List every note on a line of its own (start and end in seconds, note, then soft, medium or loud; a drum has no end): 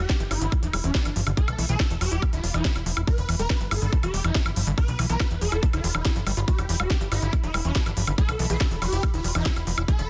0.00 0.21 G4 loud
0.10 kick loud
0.10 snare loud
0.10 closed hi-hat medium
0.20 0.27 G1 medium
0.20 0.23 E3 loud
0.20 closed hi-hat medium
0.31 0.38 G1 loud
0.31 0.34 E4 medium
0.31 0.53 E4 loud
0.31 open hi-hat loud
0.31 high woodblock soft
0.41 0.49 G1 medium
0.41 0.46 D3 medium
0.41 closed hi-hat medium
0.52 kick loud
0.52 closed hi-hat medium
0.52 high woodblock soft
0.63 0.70 E1 medium
0.63 0.67 E3 loud
0.63 0.78 E4 medium
0.63 closed hi-hat medium
0.73 0.80 E1 loud
0.73 0.76 G3 medium
0.73 open hi-hat loud
0.73 high woodblock medium
0.84 0.91 E1 loud
0.84 0.91 E3 medium
0.84 1.06 D4 loud
0.84 closed hi-hat medium
0.95 0.99 E4 loud
0.95 kick loud
0.95 snare loud
0.95 closed hi-hat medium
1.05 1.12 G1 medium
1.05 1.10 E3 loud
1.05 closed hi-hat medium
1.05 high woodblock soft
1.16 1.23 G1 loud
1.16 1.20 F3 medium
1.16 open hi-hat loud
1.24 1.34 G1 medium
1.24 1.31 D3 medium
1.24 10.10 B5 medium
1.24 closed hi-hat medium
1.24 high woodblock soft
1.37 1.40 G3 medium
1.37 1.60 A4 loud
1.37 kick loud
1.37 closed hi-hat medium
1.48 1.55 B1 medium
1.48 1.51 D3 medium
1.48 closed hi-hat medium
1.48 high woodblock medium
1.58 1.66 B1 loud
1.58 1.65 E3 loud
1.58 open hi-hat loud
1.69 1.76 B1 medium
1.69 1.76 E3 medium
1.69 1.91 A4 loud
1.69 closed hi-hat medium
1.80 1.84 E4 loud
1.80 kick loud
1.80 snare loud
1.80 closed hi-hat medium
1.80 high woodblock soft
1.90 1.97 E1 medium
1.90 1.95 E3 loud
1.90 closed hi-hat medium
2.01 2.08 E1 loud
2.01 2.06 F3 medium
2.01 2.23 G4 loud
2.01 open hi-hat loud
2.01 high woodblock soft
2.12 2.19 E1 medium
2.12 2.16 E4 medium
2.12 closed hi-hat medium
2.22 2.25 B3 medium
2.22 kick loud
2.22 closed hi-hat medium
2.22 high woodblock medium
2.33 2.40 D1 medium
2.33 2.40 D3 medium
2.33 2.48 F4 medium
2.33 closed hi-hat medium
2.44 2.51 E1 loud
2.44 2.46 F3 medium
2.44 open hi-hat loud
2.54 2.61 E1 medium
2.54 2.66 E3 medium
2.54 2.77 E4 loud
2.54 closed hi-hat medium
2.54 high woodblock soft
2.65 2.69 F3 medium
2.65 kick loud
2.65 snare loud
2.65 closed hi-hat medium
2.76 2.83 E1 medium
2.76 closed hi-hat medium
2.76 high woodblock soft
2.86 2.93 E1 loud
2.86 2.91 F3 medium
2.86 open hi-hat loud
2.97 3.04 E1 medium
2.97 3.01 E4 medium
2.97 closed hi-hat medium
2.97 high woodblock medium
3.07 3.10 E3 medium
3.07 3.30 B4 loud
3.07 kick loud
3.07 closed hi-hat medium
3.18 3.25 E1 medium
3.18 3.21 D3 medium
3.18 closed hi-hat medium
3.29 3.36 E1 loud
3.29 3.35 E3 medium
3.29 open hi-hat loud
3.29 high woodblock soft
3.39 3.46 E1 medium
3.39 3.42 G3 medium
3.39 3.62 B4 loud
3.39 closed hi-hat medium
3.50 kick loud
3.50 snare loud
3.50 closed hi-hat medium
3.50 high woodblock soft
3.61 3.68 G1 medium
3.61 3.63 E3 loud
3.61 closed hi-hat medium
3.71 3.78 G1 loud
3.71 3.74 E4 medium
3.71 3.94 A4 loud
3.71 open hi-hat loud
3.71 high woodblock medium
3.82 3.89 G1 medium
3.82 3.86 D3 medium
3.82 closed hi-hat medium
3.93 kick loud
3.93 closed hi-hat medium
4.03 4.10 E1 medium
4.03 4.08 E3 loud
4.03 4.18 G4 medium
4.03 closed hi-hat medium
4.03 high woodblock soft
4.14 4.21 E1 loud
4.14 4.17 G3 medium
4.14 open hi-hat loud
4.24 4.32 E1 loud
4.24 4.31 E3 medium
4.24 4.47 E4 medium
4.24 closed hi-hat medium
4.24 high woodblock soft
4.35 4.40 E4 loud
4.35 kick loud
4.35 snare loud
4.35 closed hi-hat medium
4.46 4.53 G1 medium
4.46 4.50 E3 loud
4.46 closed hi-hat medium
4.46 high woodblock medium
4.56 4.63 G1 loud
4.56 4.61 F3 medium
4.56 open hi-hat loud
4.67 4.74 G1 medium
4.67 4.72 D3 medium
4.67 closed hi-hat medium
4.78 4.80 G3 medium
4.78 5.00 B4 loud
4.78 kick loud
4.78 closed hi-hat medium
4.78 high woodblock soft
4.88 4.95 B1 medium
4.88 4.91 D3 medium
4.88 closed hi-hat medium
4.99 5.06 B1 loud
4.99 5.06 E3 loud
4.99 open hi-hat loud
4.99 high woodblock soft
5.09 5.17 B1 medium
5.09 5.16 E3 medium
5.09 5.32 B4 loud
5.09 closed hi-hat medium
5.20 5.25 E4 loud
5.20 kick loud
5.20 snare loud
5.20 closed hi-hat medium
5.20 high woodblock medium
5.31 5.38 E1 medium
5.31 5.35 E3 loud
5.31 closed hi-hat medium
5.41 5.49 E1 loud
5.41 5.46 F3 medium
5.41 5.64 A4 loud
5.41 open hi-hat loud
5.52 5.59 E1 medium
5.52 5.57 E4 medium
5.52 closed hi-hat medium
5.52 high woodblock soft
5.63 5.65 B3 medium
5.63 kick loud
5.63 closed hi-hat medium
5.73 5.80 D1 medium
5.73 5.80 D3 medium
5.73 5.88 F4 medium
5.73 closed hi-hat medium
5.73 high woodblock soft
5.84 5.91 E1 loud
5.84 5.87 E3 medium
5.84 open hi-hat loud
5.95 6.02 E1 loud
5.95 5.97 E3 medium
5.95 6.17 E4 loud
5.95 high woodblock medium
6.05 6.08 G3 medium
6.05 kick loud
6.05 snare loud
6.05 closed hi-hat medium
6.16 6.23 G1 medium
6.16 6.21 F3 medium
6.16 closed hi-hat medium
6.27 6.34 G1 loud
6.27 6.31 G3 medium
6.27 open hi-hat loud
6.27 high woodblock soft
6.37 6.44 G1 medium
6.37 6.40 F4 medium
6.37 closed hi-hat medium
6.48 6.51 E3 medium
6.48 6.70 G4 loud
6.48 kick loud
6.48 closed hi-hat medium
6.58 6.66 E1 medium
6.58 6.61 D3 medium
6.58 closed hi-hat medium
6.58 high woodblock soft
6.69 6.76 E1 loud
6.69 6.76 E3 medium
6.69 open hi-hat loud
6.80 6.87 E1 medium
6.80 6.83 G3 medium
6.80 7.02 G4 loud
6.80 closed hi-hat medium
6.80 high woodblock medium
6.90 kick loud
6.90 snare loud
6.90 closed hi-hat medium
7.01 7.08 G1 medium
7.01 7.04 E3 loud
7.01 closed hi-hat medium
7.12 7.19 G1 loud
7.12 7.14 E4 medium
7.12 7.34 E4 medium
7.12 open hi-hat loud
7.12 high woodblock soft
7.22 7.29 G1 medium
7.22 7.27 D3 medium
7.22 closed hi-hat medium
7.33 7.36 B3 medium
7.33 kick loud
7.33 closed hi-hat medium
7.33 high woodblock soft
7.44 7.51 E1 medium
7.44 7.48 E3 loud
7.44 7.59 E4 medium
7.44 closed hi-hat medium
7.54 7.61 E1 loud
7.54 7.57 G3 medium
7.54 open hi-hat loud
7.54 high woodblock medium
7.65 7.72 E1 medium
7.65 7.72 E3 medium
7.65 7.87 D4 loud
7.65 closed hi-hat medium
7.75 7.80 E4 loud
7.75 kick loud
7.75 snare loud
7.75 closed hi-hat medium
7.86 7.93 G1 medium
7.86 7.91 E3 loud
7.86 closed hi-hat medium
7.86 high woodblock soft
7.97 8.04 G1 loud
7.97 8.01 F3 medium
7.97 open hi-hat loud
8.07 8.14 G1 medium
8.07 8.12 D3 medium
8.07 closed hi-hat medium
8.07 high woodblock soft
8.18 8.21 G3 medium
8.18 8.40 A4 loud
8.18 kick loud
8.18 closed hi-hat medium
8.29 8.36 B1 medium
8.29 8.31 D3 medium
8.29 closed hi-hat medium
8.29 high woodblock medium
8.39 8.46 B1 loud
8.39 8.46 E3 loud
8.39 open hi-hat loud
8.50 8.57 B1 medium
8.50 8.57 E3 medium
8.50 8.72 A4 loud
8.50 closed hi-hat medium
8.61 8.65 E4 loud
8.61 kick loud
8.61 snare loud
8.61 closed hi-hat medium
8.61 high woodblock soft
8.71 8.78 E1 medium
8.71 8.76 E3 loud
8.71 closed hi-hat medium
8.82 8.89 E1 loud
8.82 8.86 F3 medium
8.82 9.04 G4 loud
8.82 open hi-hat loud
8.82 high woodblock soft
8.93 9.00 E1 medium
8.93 8.97 E4 medium
8.93 closed hi-hat medium
9.03 kick loud
9.03 closed hi-hat medium
9.03 high woodblock medium
9.14 9.21 D1 medium
9.14 9.21 D3 medium
9.14 9.29 F4 medium
9.14 closed hi-hat medium
9.24 9.32 E1 loud
9.24 9.27 F3 medium
9.24 open hi-hat loud
9.35 9.42 E1 loud
9.35 9.47 E3 medium
9.35 9.57 E4 loud
9.35 closed hi-hat medium
9.35 high woodblock soft
9.46 9.50 F3 medium
9.46 kick loud
9.46 snare loud
9.46 closed hi-hat medium
9.56 9.63 E1 medium
9.56 closed hi-hat medium
9.56 high woodblock soft
9.67 9.74 E1 loud
9.67 9.72 F3 medium
9.67 open hi-hat loud
9.78 9.85 E1 medium
9.78 9.82 E4 medium
9.78 high woodblock medium
9.88 9.91 E3 medium
9.88 10.10 A4 loud
9.88 kick loud
9.88 closed hi-hat medium
9.99 10.06 E1 medium
9.99 10.02 D3 medium
9.99 closed hi-hat medium